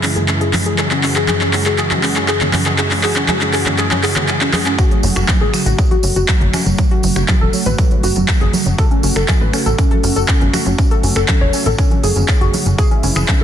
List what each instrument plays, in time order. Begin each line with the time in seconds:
Already playing: analog synth pad F#2 C#3 E3 G#3 E4
0.03 synth pluck C#4, clap, open hi-hat
0.16 synth pluck G#4, closed hi-hat, low conga
0.28 synth pluck C#4, clap, closed hi-hat
0.41 synth pluck G#4, closed hi-hat
0.53 synth pluck C#4, clap, open hi-hat, high conga
0.66 synth pluck G#4, closed hi-hat
0.78 analog synth pad F#4, synth pluck G#4, clap, closed hi-hat
0.91 synth pluck C#4, clap, closed hi-hat
1.03 synth pluck C#4, clap, open hi-hat
1.16 synth pluck G#4, clap, closed hi-hat
1.28 synth pluck G#4, clap, closed hi-hat, high conga
1.41 synth pluck C#4, clap
1.53 synth pluck C#4, clap, open hi-hat
1.66 synth pluck G#4, clap, closed hi-hat
1.78 synth pluck G#4, clap, closed hi-hat
1.91 synth pluck C#4, clap, closed hi-hat, high conga
2.03 synth pluck C#4, clap, open hi-hat
2.16 synth pluck G#4, clap, closed hi-hat
2.28 synth pluck G#4, clap, closed hi-hat
2.41 synth pluck C#4, clap, closed hi-hat, low conga
2.53 synth pluck C#4, clap, open hi-hat, high conga
2.66 synth pluck G#4, clap
2.78 synth pluck G#4, clap, closed hi-hat
2.91 synth pluck C#4, clap, open hi-hat
3.03 synth pluck G#4, clap, open hi-hat
3.16 synth pluck C#4, clap, closed hi-hat
3.28 synth pluck G#4, clap, closed hi-hat, high conga
3.41 synth pluck C#4, clap, closed hi-hat
3.53 synth pluck G#4, clap, open hi-hat
3.66 synth pluck C#4, clap, low conga
3.78 synth pluck G#4, clap, closed hi-hat
3.91 synth pluck C#4, clap, closed hi-hat, high conga
4.03 synth pluck G#4, clap, open hi-hat
4.16 synth pluck C#4, clap, low conga
4.28 synth pluck G#4, clap, closed hi-hat
4.41 synth pluck C#4, clap, closed hi-hat
4.53 synth pluck G#4, clap, open hi-hat, high conga
4.66 synth pluck C#4, clap, closed hi-hat
4.78 analog synth pad C#3 F#3 A3 F#4, synth pluck F#4, kick, closed hi-hat, tambourine
4.91 synth pluck F#3, closed hi-hat
5.03 analog synth bass F#1, synth pluck F#3, open hi-hat, tambourine
5.16 analog synth bass F#1, synth pluck F#4, finger snap, closed hi-hat, tambourine
5.28 synth pluck F#3, kick, clap, closed hi-hat, tambourine, high conga
5.41 analog synth bass A1, synth pluck G#4
5.54 synth pluck F#3, finger snap, open hi-hat, tambourine
5.66 analog synth bass A1, synth pluck F#4, closed hi-hat, tambourine
5.79 synth pluck F#3, kick, closed hi-hat, tambourine
5.91 synth pluck F#4, closed hi-hat, high conga
6.03 analog synth bass F#1, synth pluck F#3, open hi-hat, tambourine
6.16 analog synth bass F#1, synth pluck F#4, closed hi-hat, tambourine
6.28 synth pluck F#3, kick, clap, closed hi-hat, tambourine
6.41 analog synth bass F#1, synth pluck F#3, closed hi-hat, low conga
6.53 synth pluck C#4, finger snap, open hi-hat, tambourine, high conga
6.66 analog synth bass F#1, synth pluck F#3, closed hi-hat, tambourine
6.78 synth pluck F#3, kick, closed hi-hat, tambourine
6.91 synth pluck F#4, closed hi-hat
7.03 analog synth bass F#1, synth pluck F#3, open hi-hat, tambourine
7.16 analog synth bass F#1, synth pluck F#4, finger snap, closed hi-hat, tambourine
7.28 synth pluck F#3, kick, clap, closed hi-hat, tambourine, high conga
7.41 analog synth bass E1, synth pluck A4
7.53 synth pluck F#3, open hi-hat, tambourine
7.66 analog synth bass A1, synth pluck B4, closed hi-hat, tambourine, low conga
7.78 synth pluck F#3, kick, closed hi-hat, tambourine
7.91 synth pluck F#3, closed hi-hat, high conga
8.03 analog synth bass F#1, synth pluck F#4, open hi-hat, tambourine
8.16 analog synth bass F#1, synth pluck F#3, closed hi-hat, tambourine, low conga
8.28 synth pluck F#3, kick, clap, closed hi-hat, tambourine
8.41 analog synth bass F#1, synth pluck G#4, closed hi-hat
8.53 synth pluck F#3, open hi-hat, tambourine, high conga
8.66 analog synth bass F#1, synth pluck F#3, closed hi-hat, tambourine
8.78 synth pluck A4, kick, closed hi-hat, tambourine
8.91 synth pluck C#4, closed hi-hat
9.03 analog synth bass F#1, synth pluck C#4, open hi-hat, tambourine
9.16 analog synth bass F#1, synth pluck A4, finger snap, closed hi-hat, tambourine
9.28 synth pluck C#4, kick, clap, closed hi-hat, tambourine, high conga
9.41 analog synth bass A1, synth pluck B4
9.53 synth pluck C#4, finger snap, open hi-hat, tambourine
9.66 analog synth bass A1, synth pluck A4, closed hi-hat, tambourine
9.78 synth pluck C#4, kick, closed hi-hat, tambourine
9.91 synth pluck A4, closed hi-hat, high conga
10.04 analog synth bass F#1, synth pluck C#4, open hi-hat, tambourine
10.16 analog synth bass F#1, synth pluck A4, closed hi-hat, tambourine
10.28 synth pluck C#4, kick, clap, closed hi-hat, tambourine
10.41 analog synth bass F#1, synth pluck C#4, closed hi-hat, low conga
10.54 synth pluck F#4, finger snap, open hi-hat, tambourine, high conga
10.66 analog synth bass F#1, synth pluck C#4, closed hi-hat, tambourine
10.78 synth pluck C#4, kick, closed hi-hat, tambourine
10.91 synth pluck A4, closed hi-hat
11.03 analog synth bass F#1, synth pluck C#4, open hi-hat, tambourine
11.15 analog synth bass F#1, synth pluck A4, finger snap, tambourine
11.28 synth pluck C#4, kick, clap, closed hi-hat, tambourine, high conga
11.41 analog synth bass E1, synth pluck C#5
11.53 synth pluck C#4, open hi-hat, tambourine
11.66 analog synth bass A1, synth pluck A4, closed hi-hat, tambourine, low conga
11.78 synth pluck C#4, kick, closed hi-hat, tambourine
11.91 synth pluck C#4, closed hi-hat, high conga
12.03 analog synth bass F#1, synth pluck G#4, open hi-hat, tambourine
12.16 analog synth bass F#1, synth pluck C#4, closed hi-hat, tambourine, low conga
12.28 synth pluck C#4, kick, clap, closed hi-hat, tambourine
12.41 analog synth bass F#1, synth pluck F#4, closed hi-hat
12.53 synth pluck C#4, open hi-hat, tambourine, high conga
12.66 analog synth bass F#1, synth pluck C#4, closed hi-hat, tambourine
12.78 analog synth pad E3 G#3 E4, synth pluck G#4, kick, closed hi-hat, tambourine
12.91 synth pluck C#4, closed hi-hat
13.03 analog synth bass F#1, synth pluck C#4, open hi-hat, tambourine
13.15 analog synth bass F#1, synth pluck G#4, finger snap, closed hi-hat, tambourine
13.28 synth pluck C#4, kick, clap, closed hi-hat, high conga